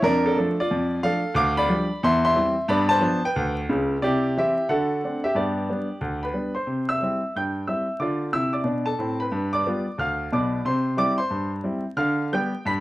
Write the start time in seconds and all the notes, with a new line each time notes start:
0.02 F2 D4 A#4
0.26 D4 A4
0.38 F3 A3 D4
0.60 F4 D5
0.71 F2
1.03 F3 A3 D4 A4 F5
1.35 D2 F5 D6
1.57 D5 B5
1.69 F3 G3 D4
2.03 E2 E5 C6
2.25 E5 C6
2.35 E3 G3 C4
2.68 G2 B3 D5 B5
2.89 C5 A5
3.01 F3 B3 D4
3.25 B4 G5
3.36 D2
3.69 C#2 C#3
4.02 C3 E4 G4 D5
4.37 E3 C4 E4 G4 E5
4.69 D3 F#4 A4 F#5
5.04 A3 C4 D4
5.24 G4 E5
5.35 G2 B3 G4 D5
5.69 G3 B3 D4
6.01 D2
6.23 B4 B5
6.33 G3 B3 D4
6.55 C5 C6
6.67 C3
6.89 E5 E6
7.02 G3 C4 E4
7.36 G2 G5 G6
7.67 G3 C4 E4 E5 E6
8.00 D3 F4 D5 D6
8.32 C3 E4 E5 E6
8.53 D5 D6
8.64 B2 D4
8.86 A4 A5
8.98 A2 C4
9.20 B4 B5
9.32 G2
9.53 D5 D6
9.66 G3 B3 F4
9.98 D2 F5 F6
10.32 B1 B2 D5 D6
10.65 C3 C5 C6
10.97 G3 C4 E4 D5 D6
11.18 C5 C6
11.30 G2
11.64 G3 C4 E4
11.97 D3 F5 F6
12.33 G3 B3 G4 G5 G6
12.65 G2 B5 B6